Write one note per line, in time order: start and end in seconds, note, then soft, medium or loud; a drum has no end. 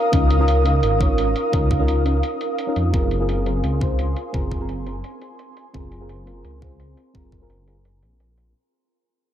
0.00 8.51 A#4 medium
0.00 8.51 F5 medium
0.00 2.90 D#6 medium
0.12 0.82 C#2 medium
0.12 0.37 C#4 medium
0.12 0.37 D#4 medium
0.12 0.38 F4 medium
0.12 0.38 A#4 loud
0.12 kick loud
0.12 closed hi-hat medium
0.30 closed hi-hat medium
0.39 0.63 C#4 medium
0.39 0.63 D#4 medium
0.39 0.64 F4 medium
0.39 0.64 A#4 medium
0.48 closed hi-hat medium
0.64 0.97 C#4 medium
0.64 0.98 D#4 medium
0.64 0.99 F4 medium
0.64 0.99 A#4 medium
0.64 closed hi-hat medium
0.83 1.34 G#1 medium
0.83 closed hi-hat medium
0.99 1.50 C#4 medium
0.99 1.51 D#4 medium
0.99 1.51 F4 medium
0.99 1.52 C#5 medium
0.99 kick loud
0.99 closed hi-hat medium
1.18 closed hi-hat medium
1.36 closed hi-hat medium
1.52 2.22 C#2 medium
1.52 1.77 C#4 medium
1.52 1.78 D#4 medium
1.52 1.78 F4 medium
1.52 1.78 A#4 medium
1.52 kick loud
1.52 closed hi-hat medium
1.71 kick loud
1.71 closed hi-hat medium
1.79 2.03 C#4 medium
1.79 2.04 D#4 medium
1.79 2.04 F4 medium
1.79 2.04 A#4 medium
1.88 closed hi-hat medium
2.05 2.14 C#4 medium
2.05 2.15 D#4 medium
2.05 2.15 F4 medium
2.05 2.15 A#4 medium
2.05 closed hi-hat medium
2.23 closed hi-hat medium
2.41 closed hi-hat medium
2.58 closed hi-hat medium
2.67 2.91 C#4 medium
2.67 2.91 D#4 medium
2.67 2.92 F4 medium
2.67 2.92 A#4 loud
2.76 2.92 F2 loud
2.76 closed hi-hat medium
2.92 3.62 F#1 medium
2.92 3.18 C4 medium
2.92 3.18 F4 medium
2.92 3.18 G#4 medium
2.92 3.18 A#4 medium
2.92 8.51 G#5 medium
2.92 8.51 C6 medium
2.92 kick loud
2.92 closed hi-hat medium
3.11 closed hi-hat medium
3.19 3.44 C4 medium
3.19 3.44 F4 medium
3.19 3.44 G#4 medium
3.19 3.45 A#4 medium
3.29 closed hi-hat medium
3.45 3.78 C4 medium
3.45 3.79 F4 medium
3.45 3.79 G#4 medium
3.45 3.80 A#4 medium
3.45 closed hi-hat medium
3.64 4.15 C#2 medium
3.64 closed hi-hat medium
3.79 4.31 C4 medium
3.79 4.32 F4 medium
3.79 4.32 G#4 medium
3.79 4.33 C5 medium
3.79 kick loud
3.79 closed hi-hat medium
3.99 closed hi-hat medium
4.16 closed hi-hat medium
4.33 5.03 F#1 medium
4.33 4.58 C4 medium
4.33 4.58 F4 medium
4.33 4.58 G#4 medium
4.33 4.59 A#4 medium
4.33 kick loud
4.33 closed hi-hat medium
4.51 kick medium
4.51 closed hi-hat medium
4.60 4.84 C4 medium
4.60 4.84 F4 medium
4.60 4.85 G#4 medium
4.60 4.85 A#4 loud
4.69 closed hi-hat medium
4.85 4.95 C4 medium
4.85 4.95 F4 medium
4.85 4.95 G#4 medium
4.85 4.96 A#4 medium
4.85 closed hi-hat medium
5.04 closed hi-hat medium
5.22 closed hi-hat medium
5.39 closed hi-hat medium
5.57 closed hi-hat medium
5.73 6.43 F#1 medium
5.73 5.98 C4 medium
5.73 5.99 F4 medium
5.73 5.99 G#4 medium
5.73 5.99 A#4 medium
5.73 kick loud
5.73 closed hi-hat medium
5.92 closed hi-hat medium
6.00 6.24 C4 medium
6.00 6.25 F4 medium
6.00 6.25 G#4 medium
6.00 6.25 A#4 medium
6.09 closed hi-hat medium
6.26 6.59 C4 medium
6.26 6.60 F4 medium
6.26 6.60 G#4 medium
6.26 6.60 A#4 medium
6.26 closed hi-hat medium
6.44 6.96 C#2 medium
6.44 closed hi-hat medium
6.60 7.12 C4 medium
6.60 7.12 F4 medium
6.60 7.13 G#4 medium
6.60 7.13 C5 medium
6.60 kick medium
6.60 closed hi-hat medium
6.80 closed hi-hat medium
6.97 closed hi-hat medium
7.14 8.04 F#1 medium
7.14 7.39 C4 medium
7.14 7.39 F4 medium
7.14 7.39 G#4 medium
7.14 7.40 A#4 loud
7.14 kick loud
7.14 closed hi-hat medium
7.32 kick medium
7.32 closed hi-hat medium
7.40 7.65 C4 medium
7.40 7.65 F4 medium
7.40 7.65 G#4 medium
7.40 7.66 A#4 medium
7.50 closed hi-hat medium
7.66 7.76 C4 medium
7.66 7.76 F4 medium
7.66 7.76 G#4 medium
7.66 7.76 A#4 medium
7.66 closed hi-hat medium
7.85 closed hi-hat medium
8.03 8.54 A#1 medium
8.03 closed hi-hat medium
8.20 closed hi-hat medium
8.38 closed hi-hat medium